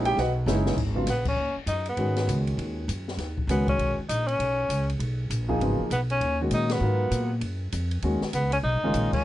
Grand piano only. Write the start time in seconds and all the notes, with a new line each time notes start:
Already playing: G#3 C#4 D#4 E4
0.05 G4 G5
0.19 F#4 B4 D#5 F#5
0.47 G#3 C#4 D#4 E4
0.95 C#3 F#3 B3 F4
1.98 D#3 G#3 C#4 F#4
3.49 D#3 G#3 C#4 F#4
5.49 F3 A#3 D#4 G#4
5.61 C#3 F#3 B3 F4
6.41 D#3 G#3 C#4 F#4
6.82 F#3 B3 F4 A#4
8.03 D#3 G#3 C#4 F#4
8.83 D#3 G#3 C#4 F4